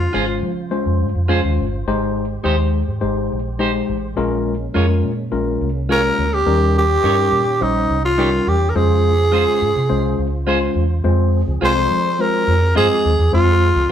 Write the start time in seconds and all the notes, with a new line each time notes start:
Already playing: C#3 F4 C5
0.13 G#1 G#3 C#4 F4 G#4 C5
0.43 F3
0.71 G#3 C#4 F4 C5
0.86 F2
1.01 G2
1.15 F2
1.28 G#3 C#4 F4 G#4 C5
1.45 D#2
1.58 G1
1.87 G#1 G#3 D#4 G4 C5
2.44 D#2 G#3 D#4 G4 C5
2.88 G#2
3.01 G#1 G#3 D#4 G4 C5
3.32 A#1
3.59 G#3 D#4 G4 C5
3.89 A1
4.17 A#1 G#3 A#3 C#4 F4 A#4
4.74 F2 G#3 C#4 F4 G#4 A#4 C#5
5.04 A#2
5.32 A#1 G#3 C#4 F4 A#4
5.61 C2
5.89 G#3 C#4 F4 G#4 A#4 C#5
6.18 D2
6.34 G4
6.46 D#2 D#3 G3 C#4 D#4 G4 A#4
6.78 G4
7.04 G2 G3 C#4 D#4 G4 A#4 C#5
7.32 A#2
7.61 A#1 G3 C#4 D#4 C5
7.90 C2
8.05 F4
8.18 G3 C#4 D#4 G4 A#4 C#5
8.47 E2 G4
8.70 A#4
8.76 F2 C#3 G#3 C#4 F4 G#4 C5
9.32 G#3 C#4 F4 G#4 C5
9.62 G#2
9.76 C3
9.89 C2 G#3 C#4 F4 C5
10.19 C#2
10.47 G#3 C#4 F4 G#4 C5
10.75 E2
11.04 F2 F3 G#3 C4 F4 G#4 C5
11.48 C#2
11.61 C2 G#3 C4 F4 G#4 C5
11.91 F3
12.19 G#3 C4 F4 A#4 C5
12.47 F2
12.75 G2 G#3 C4 F4 G#4 C5 D#5
13.05 D#2
13.19 E2
13.33 F2 G#3 C4 F4 C5
13.76 C#2